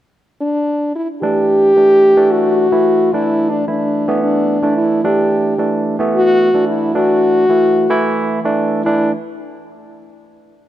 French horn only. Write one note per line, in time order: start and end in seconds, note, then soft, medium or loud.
0.41 0.92 D4 medium
0.96 1.08 E4 medium
1.22 2.33 G4 loud
2.31 3.15 F#4 loud
3.13 3.51 E4 loud
3.50 3.68 D4 medium
3.69 4.19 D4 medium
4.23 4.73 D4 medium
4.77 5.07 E4 medium
5.05 5.86 G4 medium
6.14 6.64 F#4 loud
6.68 6.97 E4 medium
6.95 8.31 F#4 loud
8.84 9.10 E4 medium